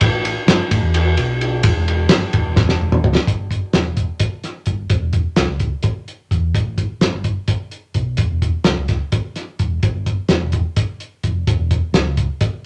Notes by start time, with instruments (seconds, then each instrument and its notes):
0.01 fingered electric bass A1, kick, ride
0.11 fingered electric bass A1
0.25 ride
0.46 fingered electric bass G1, snare, ride
0.71 fingered electric bass A2, kick, ride
0.82 fingered electric bass E2
0.94 ride
1.17 fingered electric bass B1, ride
1.41 ride
1.63 fingered electric bass E1, kick, ride
1.77 fingered electric bass E1
1.88 ride
2.09 fingered electric bass G1, snare, ride
2.33 fingered electric bass E1, kick, ride
2.45 fingered electric bass E1
2.56 kick, snare
2.69 snare
2.80 fingered electric bass E1
2.92 mid tom
3.03 fingered electric bass C#2, floor tom
3.15 snare
3.27 fingered electric bass G1, kick, closed hi-hat
3.38 fingered electric bass G1
3.51 kick, closed hi-hat
3.73 fingered electric bass E1, snare, closed hi-hat
3.85 fingered electric bass E1
3.97 kick, closed hi-hat
4.20 kick, closed hi-hat
4.44 snare, closed hi-hat
4.66 fingered electric bass G1, kick, closed hi-hat
4.90 fingered electric bass E1, kick, closed hi-hat
5.01 fingered electric bass E1
5.13 kick, closed hi-hat
5.36 fingered electric bass C#2, snare, closed hi-hat
5.48 fingered electric bass C#2
5.60 kick, closed hi-hat
5.83 kick, closed hi-hat
6.08 closed hi-hat
6.31 fingered electric bass E2, kick, closed hi-hat
6.54 fingered electric bass A1, kick, closed hi-hat
6.64 fingered electric bass A1
6.78 kick, closed hi-hat
7.00 fingered electric bass G1, snare, closed hi-hat
7.12 fingered electric bass G1
7.24 kick, closed hi-hat
7.48 kick, closed hi-hat
7.71 closed hi-hat
7.94 fingered electric bass B1, kick, closed hi-hat
8.17 fingered electric bass E1, kick, closed hi-hat
8.30 fingered electric bass E1
8.42 kick, closed hi-hat
8.64 fingered electric bass C#2, snare, closed hi-hat
8.77 fingered electric bass C#2
8.88 kick, snare, closed hi-hat
9.12 kick, closed hi-hat
9.36 snare, closed hi-hat
9.59 fingered electric bass E1, kick, closed hi-hat
9.83 fingered electric bass G1, kick, closed hi-hat
9.94 fingered electric bass G1
10.06 kick, closed hi-hat
10.28 fingered electric bass E1, snare, closed hi-hat
10.40 fingered electric bass E1
10.52 kick, closed hi-hat
10.76 kick, closed hi-hat
11.00 closed hi-hat
11.23 fingered electric bass F1, kick, closed hi-hat
11.47 fingered electric bass E1, kick, closed hi-hat
11.57 fingered electric bass E1
11.71 kick, closed hi-hat
11.93 fingered electric bass C#2, snare, closed hi-hat
12.05 fingered electric bass C#2
12.17 kick, closed hi-hat
12.41 kick, closed hi-hat